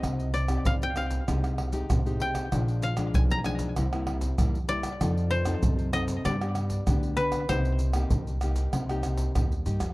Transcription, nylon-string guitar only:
\new Staff \with { instrumentName = "Nylon-string guitar" } { \time 4/4 \key c \minor \tempo 4 = 97 << { <c' ees' g'>8 r16 <c' ees' g'>8. <c' ees' g'>8 <aes ees' g'>8. <aes ees' g'>8 <aes ees' g'>8. | <f aes d'>8. <f aes d'>8. <f aes d'>8 <g bes e'>16 <g bes e'>8. <g bes e'>16 r16 <g bes e'>16 r16 | <c' ees' a'>8. <c' ees' a'>8. <c' ees' a'>8 <b d' g'>16 <b d' g'>8. <b d' g'>4 | <bes ees' g'>8. <bes ees' g'>8. <bes ees' g'>8. <bes ees' g'>8. <bes ees' g'>16 r16 <bes ees' g'>16 r16 | } \\ { c4 g,4 c4 c4 | bes,4 f,4 c4 g,4 | f4 c4 g4 d4 | c4 g,4 c4 g,4 | } >> }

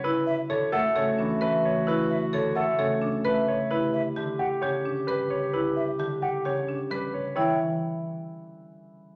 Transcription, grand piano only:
\new Staff \with { instrumentName = "Grand piano" } { \time 4/4 \key e \dorian \tempo 4 = 131 b'8 r8 cis''8 a'8 cis''8 r8 b'8 cis''8 | b'8 r8 cis''8 a'8 cis''8 r8 b'8 cis''8 | b'8 r4 g'8 cis''8 r8 b'8 cis''8 | b'8 r4 g'8 cis''8 r8 b'8 cis''8 |
cis''8 r2. r8 | }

